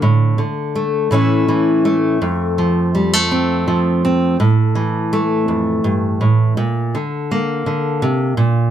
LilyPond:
\new Staff \with { instrumentName = "Steel-string acoustic guitar" } { \clef bass \time 6/8 \key a \phrygian \tempo 4. = 55 << { r4 a8 <e a cis' e'>4 a8 | r4 g16 a16 c'4 c'8 | r4 a2 | r4 bes2 | } \\ { <a, d>8 d4 a,8 e4 | f,8 f4. f4 | a,8 e4 f,8 g,8 a,8 | bes,8 d4 d8 c8 bes,8 | } >> }